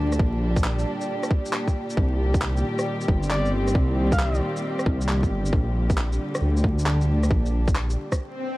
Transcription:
0.00 0.19 D2 medium
0.00 8.19 A#2 medium
0.00 1.97 D3 medium
0.00 8.20 G3 medium
0.00 3.26 D4 medium
0.00 8.19 G4 medium
0.12 cross-stick soft
0.12 shaker medium
0.19 0.85 A#1 loud
0.19 kick loud
0.56 kick loud
0.56 shaker medium
0.64 clap loud
0.79 shaker soft
1.01 shaker soft
1.23 cross-stick soft
1.23 shaker soft
1.31 kick loud
1.46 shaker medium
1.53 clap loud
1.68 kick medium
1.68 shaker soft
1.90 shaker soft
1.97 2.63 C2 loud
1.97 kick loud
2.11 5.53 D#3 medium
2.34 kick loud
2.34 shaker soft
2.42 clap loud
2.57 shaker soft
2.79 cross-stick medium
2.79 shaker medium
2.93 6.12 C4 medium
3.01 shaker soft
3.08 3.74 G1 medium
3.08 kick loud
3.23 shaker medium
3.31 3.51 D5 medium
3.31 clap loud
3.46 shaker soft
3.68 cross-stick soft
3.68 shaker medium
3.75 4.41 C2 loud
3.75 kick loud
4.12 4.42 F5 medium
4.12 kick loud
4.12 shaker soft
4.19 clap loud
4.34 shaker soft
4.57 shaker soft
4.79 cross-stick medium
4.79 shaker soft
4.86 5.30 C2 loud
4.86 kick medium
5.01 shaker medium
5.09 clap medium
5.23 kick medium
5.23 shaker soft
5.30 5.52 G1 medium
5.46 shaker medium
5.53 6.19 A#1 loud
5.53 kick loud
5.59 8.19 D3 medium
5.90 kick loud
5.90 shaker medium
5.98 clap loud
6.13 shaker soft
6.35 cross-stick medium
6.35 shaker soft
6.41 6.85 D2 medium
6.57 8.19 D4 medium
6.57 shaker soft
6.64 kick medium
6.79 shaker medium
6.86 7.30 D2 medium
6.86 clap loud
7.01 shaker soft
7.23 cross-stick soft
7.23 shaker medium
7.30 7.96 A#1 loud
7.30 kick loud
7.46 shaker soft
7.68 kick loud
7.68 shaker medium
7.75 clap loud
7.90 shaker soft
8.12 kick medium
8.12 cross-stick medium
8.12 shaker medium
8.19 swell medium

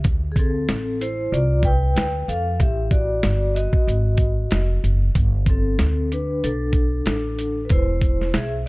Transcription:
0.04 0.65 D2 loud
0.04 kick loud
0.04 closed hi-hat medium
0.32 0.37 G#4 medium
0.36 0.98 C4 medium
0.36 1.04 A4 medium
0.36 kick medium
0.36 closed hi-hat medium
0.69 1.30 A1 medium
0.69 snare loud
0.69 closed hi-hat medium
1.01 1.30 E4 medium
1.01 1.34 C5 medium
1.01 closed hi-hat medium
1.32 1.93 C2 medium
1.32 1.62 F4 medium
1.32 1.62 D5 loud
1.32 closed hi-hat medium
1.63 2.25 B4 medium
1.63 2.24 G5 loud
1.63 kick medium
1.63 closed hi-hat medium
1.96 2.27 D2 medium
1.96 snare loud
1.96 closed hi-hat medium
2.28 2.58 F2 medium
2.28 2.58 A4 medium
2.28 2.58 F5 medium
2.28 closed hi-hat medium
2.60 3.21 A1 loud
2.60 2.90 G4 medium
2.60 2.90 E5 medium
2.60 kick loud
2.60 closed hi-hat medium
2.91 3.51 F#4 medium
2.91 3.52 D5 medium
2.91 kick medium
2.91 closed hi-hat medium
3.23 3.72 G1 medium
3.23 snare medium
3.23 closed hi-hat medium
3.55 4.79 F#4 medium
3.55 4.79 D#5 medium
3.55 closed hi-hat medium
3.73 muted upright bass stroke soft
3.73 kick loud
3.87 4.48 G#1 medium
3.87 closed hi-hat medium
4.17 kick medium
4.17 closed hi-hat medium
4.51 4.82 F1 medium
4.51 snare loud
4.51 closed hi-hat medium
4.84 5.14 F#1 medium
4.84 closed hi-hat medium
5.15 5.76 G1 loud
5.15 kick loud
5.15 closed hi-hat medium
5.46 6.08 C4 medium
5.46 6.08 A4 medium
5.46 kick medium
5.46 closed hi-hat medium
5.79 6.40 D2 medium
5.79 snare medium
5.79 closed hi-hat medium
6.12 6.42 D4 medium
6.12 6.45 B4 medium
6.12 closed hi-hat medium
6.44 7.04 B1 medium
6.44 7.03 D4 medium
6.44 7.03 A4 medium
6.44 closed hi-hat medium
6.73 kick medium
6.73 closed hi-hat medium
7.06 7.67 A1 medium
7.06 7.61 D4 medium
7.06 7.66 A4 medium
7.06 snare loud
7.06 closed hi-hat medium
7.39 closed hi-hat medium
7.65 7.71 B4 medium
7.69 8.31 E1 medium
7.69 8.31 E4 medium
7.69 8.31 C5 loud
7.69 kick loud
7.69 closed hi-hat medium
8.02 kick medium
8.02 closed hi-hat medium
8.21 snare soft
8.34 8.68 B1 medium
8.34 8.49 G#4 medium
8.34 8.49 E5 loud
8.34 snare loud
8.34 closed hi-hat medium

